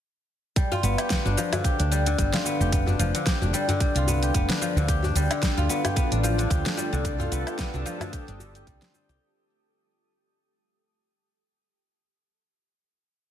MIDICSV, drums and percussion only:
0, 0, Header, 1, 3, 480
1, 0, Start_track
1, 0, Tempo, 540541
1, 500, Time_signature, 4, 2, 24, 8
1, 11813, End_track
2, 0, Start_track
2, 0, Title_t, "Djembe"
2, 637, Note_on_c, 9, 64, 87
2, 638, Note_on_c, 9, 63, 71
2, 725, Note_off_c, 9, 64, 0
2, 727, Note_off_c, 9, 63, 0
2, 1111, Note_on_c, 9, 63, 69
2, 1200, Note_off_c, 9, 63, 0
2, 1224, Note_on_c, 9, 62, 55
2, 1313, Note_off_c, 9, 62, 0
2, 1357, Note_on_c, 9, 63, 63
2, 1357, Note_on_c, 9, 64, 90
2, 1446, Note_off_c, 9, 63, 0
2, 1446, Note_off_c, 9, 64, 0
2, 1702, Note_on_c, 9, 63, 30
2, 1791, Note_off_c, 9, 63, 0
2, 2075, Note_on_c, 9, 62, 49
2, 2163, Note_off_c, 9, 62, 0
2, 2172, Note_on_c, 9, 62, 61
2, 2260, Note_off_c, 9, 62, 0
2, 2543, Note_on_c, 9, 63, 81
2, 2549, Note_on_c, 9, 64, 92
2, 2632, Note_off_c, 9, 63, 0
2, 2638, Note_off_c, 9, 64, 0
2, 3035, Note_on_c, 9, 63, 72
2, 3123, Note_off_c, 9, 63, 0
2, 3136, Note_on_c, 9, 62, 57
2, 3225, Note_off_c, 9, 62, 0
2, 3267, Note_on_c, 9, 63, 70
2, 3275, Note_on_c, 9, 64, 90
2, 3356, Note_off_c, 9, 63, 0
2, 3364, Note_off_c, 9, 64, 0
2, 3505, Note_on_c, 9, 62, 46
2, 3594, Note_off_c, 9, 62, 0
2, 3616, Note_on_c, 9, 64, 78
2, 3705, Note_off_c, 9, 64, 0
2, 4097, Note_on_c, 9, 62, 59
2, 4186, Note_off_c, 9, 62, 0
2, 4462, Note_on_c, 9, 63, 74
2, 4477, Note_on_c, 9, 64, 93
2, 4551, Note_off_c, 9, 63, 0
2, 4565, Note_off_c, 9, 64, 0
2, 4953, Note_on_c, 9, 63, 81
2, 5042, Note_off_c, 9, 63, 0
2, 5059, Note_on_c, 9, 62, 62
2, 5148, Note_off_c, 9, 62, 0
2, 5188, Note_on_c, 9, 63, 61
2, 5193, Note_on_c, 9, 64, 88
2, 5277, Note_off_c, 9, 63, 0
2, 5281, Note_off_c, 9, 64, 0
2, 5545, Note_on_c, 9, 63, 35
2, 5634, Note_off_c, 9, 63, 0
2, 5907, Note_on_c, 9, 62, 57
2, 5996, Note_off_c, 9, 62, 0
2, 6015, Note_on_c, 9, 62, 57
2, 6104, Note_off_c, 9, 62, 0
2, 6389, Note_on_c, 9, 63, 76
2, 6389, Note_on_c, 9, 64, 82
2, 6477, Note_off_c, 9, 64, 0
2, 6478, Note_off_c, 9, 63, 0
2, 6872, Note_on_c, 9, 63, 67
2, 6961, Note_off_c, 9, 63, 0
2, 6978, Note_on_c, 9, 62, 54
2, 7067, Note_off_c, 9, 62, 0
2, 7107, Note_on_c, 9, 64, 90
2, 7111, Note_on_c, 9, 63, 68
2, 7195, Note_off_c, 9, 64, 0
2, 7200, Note_off_c, 9, 63, 0
2, 7353, Note_on_c, 9, 62, 44
2, 7441, Note_off_c, 9, 62, 0
2, 7456, Note_on_c, 9, 64, 80
2, 7545, Note_off_c, 9, 64, 0
2, 7940, Note_on_c, 9, 62, 51
2, 8029, Note_off_c, 9, 62, 0
2, 11813, End_track
3, 0, Start_track
3, 0, Title_t, "Drums"
3, 499, Note_on_c, 9, 36, 97
3, 500, Note_on_c, 9, 42, 54
3, 506, Note_on_c, 9, 82, 43
3, 588, Note_off_c, 9, 36, 0
3, 588, Note_off_c, 9, 42, 0
3, 595, Note_off_c, 9, 82, 0
3, 640, Note_on_c, 9, 82, 21
3, 729, Note_off_c, 9, 82, 0
3, 740, Note_on_c, 9, 42, 28
3, 746, Note_on_c, 9, 82, 68
3, 829, Note_off_c, 9, 42, 0
3, 835, Note_off_c, 9, 82, 0
3, 874, Note_on_c, 9, 42, 45
3, 874, Note_on_c, 9, 77, 53
3, 880, Note_on_c, 9, 82, 30
3, 962, Note_off_c, 9, 42, 0
3, 962, Note_off_c, 9, 77, 0
3, 969, Note_off_c, 9, 82, 0
3, 979, Note_on_c, 9, 38, 78
3, 979, Note_on_c, 9, 42, 54
3, 980, Note_on_c, 9, 36, 92
3, 985, Note_on_c, 9, 82, 40
3, 1068, Note_off_c, 9, 36, 0
3, 1068, Note_off_c, 9, 38, 0
3, 1068, Note_off_c, 9, 42, 0
3, 1074, Note_off_c, 9, 82, 0
3, 1121, Note_on_c, 9, 82, 21
3, 1210, Note_off_c, 9, 82, 0
3, 1226, Note_on_c, 9, 82, 82
3, 1315, Note_off_c, 9, 82, 0
3, 1355, Note_on_c, 9, 42, 43
3, 1355, Note_on_c, 9, 77, 56
3, 1361, Note_on_c, 9, 82, 33
3, 1444, Note_off_c, 9, 42, 0
3, 1444, Note_off_c, 9, 77, 0
3, 1450, Note_off_c, 9, 82, 0
3, 1460, Note_on_c, 9, 36, 94
3, 1462, Note_on_c, 9, 42, 50
3, 1469, Note_on_c, 9, 82, 40
3, 1548, Note_off_c, 9, 36, 0
3, 1551, Note_off_c, 9, 42, 0
3, 1557, Note_off_c, 9, 82, 0
3, 1595, Note_on_c, 9, 42, 41
3, 1601, Note_on_c, 9, 82, 20
3, 1684, Note_off_c, 9, 42, 0
3, 1690, Note_off_c, 9, 82, 0
3, 1707, Note_on_c, 9, 82, 72
3, 1796, Note_off_c, 9, 82, 0
3, 1833, Note_on_c, 9, 42, 43
3, 1839, Note_on_c, 9, 82, 32
3, 1922, Note_off_c, 9, 42, 0
3, 1928, Note_off_c, 9, 82, 0
3, 1940, Note_on_c, 9, 36, 91
3, 1941, Note_on_c, 9, 42, 54
3, 1947, Note_on_c, 9, 82, 42
3, 2028, Note_off_c, 9, 36, 0
3, 2030, Note_off_c, 9, 42, 0
3, 2036, Note_off_c, 9, 82, 0
3, 2073, Note_on_c, 9, 38, 71
3, 2073, Note_on_c, 9, 42, 50
3, 2079, Note_on_c, 9, 82, 21
3, 2162, Note_off_c, 9, 38, 0
3, 2162, Note_off_c, 9, 42, 0
3, 2168, Note_off_c, 9, 82, 0
3, 2185, Note_on_c, 9, 82, 75
3, 2273, Note_off_c, 9, 82, 0
3, 2318, Note_on_c, 9, 82, 31
3, 2407, Note_off_c, 9, 82, 0
3, 2420, Note_on_c, 9, 36, 105
3, 2420, Note_on_c, 9, 42, 53
3, 2426, Note_on_c, 9, 82, 43
3, 2508, Note_off_c, 9, 36, 0
3, 2508, Note_off_c, 9, 42, 0
3, 2515, Note_off_c, 9, 82, 0
3, 2560, Note_on_c, 9, 82, 21
3, 2649, Note_off_c, 9, 82, 0
3, 2660, Note_on_c, 9, 42, 28
3, 2666, Note_on_c, 9, 82, 71
3, 2748, Note_off_c, 9, 42, 0
3, 2755, Note_off_c, 9, 82, 0
3, 2794, Note_on_c, 9, 42, 41
3, 2801, Note_on_c, 9, 82, 31
3, 2883, Note_off_c, 9, 42, 0
3, 2890, Note_off_c, 9, 82, 0
3, 2898, Note_on_c, 9, 36, 97
3, 2900, Note_on_c, 9, 38, 72
3, 2900, Note_on_c, 9, 42, 54
3, 2907, Note_on_c, 9, 82, 42
3, 2987, Note_off_c, 9, 36, 0
3, 2989, Note_off_c, 9, 38, 0
3, 2989, Note_off_c, 9, 42, 0
3, 2995, Note_off_c, 9, 82, 0
3, 3042, Note_on_c, 9, 82, 22
3, 3130, Note_off_c, 9, 82, 0
3, 3147, Note_on_c, 9, 82, 81
3, 3236, Note_off_c, 9, 82, 0
3, 3274, Note_on_c, 9, 42, 40
3, 3280, Note_on_c, 9, 82, 31
3, 3363, Note_off_c, 9, 42, 0
3, 3369, Note_off_c, 9, 82, 0
3, 3378, Note_on_c, 9, 36, 110
3, 3379, Note_on_c, 9, 42, 50
3, 3385, Note_on_c, 9, 82, 42
3, 3467, Note_off_c, 9, 36, 0
3, 3467, Note_off_c, 9, 42, 0
3, 3474, Note_off_c, 9, 82, 0
3, 3513, Note_on_c, 9, 42, 40
3, 3520, Note_on_c, 9, 82, 21
3, 3602, Note_off_c, 9, 42, 0
3, 3609, Note_off_c, 9, 82, 0
3, 3626, Note_on_c, 9, 82, 78
3, 3715, Note_off_c, 9, 82, 0
3, 3752, Note_on_c, 9, 42, 42
3, 3759, Note_on_c, 9, 82, 32
3, 3841, Note_off_c, 9, 42, 0
3, 3847, Note_off_c, 9, 82, 0
3, 3858, Note_on_c, 9, 36, 103
3, 3859, Note_on_c, 9, 42, 51
3, 3865, Note_on_c, 9, 82, 42
3, 3947, Note_off_c, 9, 36, 0
3, 3947, Note_off_c, 9, 42, 0
3, 3954, Note_off_c, 9, 82, 0
3, 3992, Note_on_c, 9, 38, 76
3, 3992, Note_on_c, 9, 42, 49
3, 3999, Note_on_c, 9, 82, 23
3, 4081, Note_off_c, 9, 38, 0
3, 4081, Note_off_c, 9, 42, 0
3, 4087, Note_off_c, 9, 82, 0
3, 4105, Note_on_c, 9, 82, 74
3, 4193, Note_off_c, 9, 82, 0
3, 4239, Note_on_c, 9, 82, 32
3, 4328, Note_off_c, 9, 82, 0
3, 4337, Note_on_c, 9, 36, 102
3, 4338, Note_on_c, 9, 42, 56
3, 4344, Note_on_c, 9, 82, 44
3, 4426, Note_off_c, 9, 36, 0
3, 4426, Note_off_c, 9, 42, 0
3, 4433, Note_off_c, 9, 82, 0
3, 4479, Note_on_c, 9, 82, 21
3, 4568, Note_off_c, 9, 82, 0
3, 4578, Note_on_c, 9, 42, 28
3, 4584, Note_on_c, 9, 82, 79
3, 4667, Note_off_c, 9, 42, 0
3, 4673, Note_off_c, 9, 82, 0
3, 4713, Note_on_c, 9, 42, 42
3, 4713, Note_on_c, 9, 77, 56
3, 4719, Note_on_c, 9, 82, 35
3, 4801, Note_off_c, 9, 42, 0
3, 4801, Note_off_c, 9, 77, 0
3, 4808, Note_off_c, 9, 82, 0
3, 4817, Note_on_c, 9, 36, 104
3, 4819, Note_on_c, 9, 38, 75
3, 4819, Note_on_c, 9, 42, 51
3, 4825, Note_on_c, 9, 82, 42
3, 4906, Note_off_c, 9, 36, 0
3, 4907, Note_off_c, 9, 38, 0
3, 4907, Note_off_c, 9, 42, 0
3, 4914, Note_off_c, 9, 82, 0
3, 4958, Note_on_c, 9, 82, 22
3, 5047, Note_off_c, 9, 82, 0
3, 5063, Note_on_c, 9, 82, 82
3, 5152, Note_off_c, 9, 82, 0
3, 5192, Note_on_c, 9, 42, 40
3, 5192, Note_on_c, 9, 77, 52
3, 5198, Note_on_c, 9, 82, 31
3, 5281, Note_off_c, 9, 42, 0
3, 5281, Note_off_c, 9, 77, 0
3, 5287, Note_off_c, 9, 82, 0
3, 5297, Note_on_c, 9, 36, 109
3, 5299, Note_on_c, 9, 42, 50
3, 5305, Note_on_c, 9, 82, 45
3, 5386, Note_off_c, 9, 36, 0
3, 5388, Note_off_c, 9, 42, 0
3, 5394, Note_off_c, 9, 82, 0
3, 5434, Note_on_c, 9, 42, 36
3, 5440, Note_on_c, 9, 82, 21
3, 5522, Note_off_c, 9, 42, 0
3, 5529, Note_off_c, 9, 82, 0
3, 5545, Note_on_c, 9, 82, 83
3, 5634, Note_off_c, 9, 82, 0
3, 5674, Note_on_c, 9, 42, 39
3, 5680, Note_on_c, 9, 82, 32
3, 5763, Note_off_c, 9, 42, 0
3, 5769, Note_off_c, 9, 82, 0
3, 5777, Note_on_c, 9, 36, 102
3, 5781, Note_on_c, 9, 42, 52
3, 5788, Note_on_c, 9, 82, 43
3, 5866, Note_off_c, 9, 36, 0
3, 5870, Note_off_c, 9, 42, 0
3, 5876, Note_off_c, 9, 82, 0
3, 5914, Note_on_c, 9, 38, 74
3, 5914, Note_on_c, 9, 42, 46
3, 5921, Note_on_c, 9, 82, 21
3, 6003, Note_off_c, 9, 38, 0
3, 6003, Note_off_c, 9, 42, 0
3, 6009, Note_off_c, 9, 82, 0
3, 6026, Note_on_c, 9, 82, 83
3, 6115, Note_off_c, 9, 82, 0
3, 6161, Note_on_c, 9, 82, 35
3, 6249, Note_off_c, 9, 82, 0
3, 6258, Note_on_c, 9, 36, 109
3, 6260, Note_on_c, 9, 42, 52
3, 6267, Note_on_c, 9, 82, 45
3, 6347, Note_off_c, 9, 36, 0
3, 6349, Note_off_c, 9, 42, 0
3, 6355, Note_off_c, 9, 82, 0
3, 6400, Note_on_c, 9, 82, 22
3, 6489, Note_off_c, 9, 82, 0
3, 6499, Note_on_c, 9, 42, 28
3, 6506, Note_on_c, 9, 82, 79
3, 6588, Note_off_c, 9, 42, 0
3, 6594, Note_off_c, 9, 82, 0
3, 6633, Note_on_c, 9, 42, 39
3, 6633, Note_on_c, 9, 77, 53
3, 6639, Note_on_c, 9, 82, 32
3, 6722, Note_off_c, 9, 42, 0
3, 6722, Note_off_c, 9, 77, 0
3, 6728, Note_off_c, 9, 82, 0
3, 6737, Note_on_c, 9, 38, 70
3, 6737, Note_on_c, 9, 42, 49
3, 6738, Note_on_c, 9, 36, 100
3, 6743, Note_on_c, 9, 82, 45
3, 6826, Note_off_c, 9, 38, 0
3, 6826, Note_off_c, 9, 42, 0
3, 6827, Note_off_c, 9, 36, 0
3, 6832, Note_off_c, 9, 82, 0
3, 6878, Note_on_c, 9, 82, 22
3, 6967, Note_off_c, 9, 82, 0
3, 6985, Note_on_c, 9, 82, 87
3, 7074, Note_off_c, 9, 82, 0
3, 7113, Note_on_c, 9, 42, 41
3, 7113, Note_on_c, 9, 77, 57
3, 7119, Note_on_c, 9, 82, 31
3, 7202, Note_off_c, 9, 42, 0
3, 7202, Note_off_c, 9, 77, 0
3, 7208, Note_off_c, 9, 82, 0
3, 7219, Note_on_c, 9, 36, 99
3, 7219, Note_on_c, 9, 42, 51
3, 7226, Note_on_c, 9, 82, 42
3, 7308, Note_off_c, 9, 36, 0
3, 7308, Note_off_c, 9, 42, 0
3, 7315, Note_off_c, 9, 82, 0
3, 7354, Note_on_c, 9, 42, 40
3, 7360, Note_on_c, 9, 82, 20
3, 7443, Note_off_c, 9, 42, 0
3, 7449, Note_off_c, 9, 82, 0
3, 7465, Note_on_c, 9, 82, 82
3, 7554, Note_off_c, 9, 82, 0
3, 7593, Note_on_c, 9, 42, 40
3, 7599, Note_on_c, 9, 82, 31
3, 7682, Note_off_c, 9, 42, 0
3, 7688, Note_off_c, 9, 82, 0
3, 7699, Note_on_c, 9, 36, 103
3, 7700, Note_on_c, 9, 42, 50
3, 7706, Note_on_c, 9, 82, 43
3, 7788, Note_off_c, 9, 36, 0
3, 7789, Note_off_c, 9, 42, 0
3, 7795, Note_off_c, 9, 82, 0
3, 7832, Note_on_c, 9, 38, 75
3, 7832, Note_on_c, 9, 42, 48
3, 7838, Note_on_c, 9, 82, 23
3, 7921, Note_off_c, 9, 38, 0
3, 7921, Note_off_c, 9, 42, 0
3, 7927, Note_off_c, 9, 82, 0
3, 7944, Note_on_c, 9, 82, 77
3, 8033, Note_off_c, 9, 82, 0
3, 8078, Note_on_c, 9, 82, 35
3, 8167, Note_off_c, 9, 82, 0
3, 11813, End_track
0, 0, End_of_file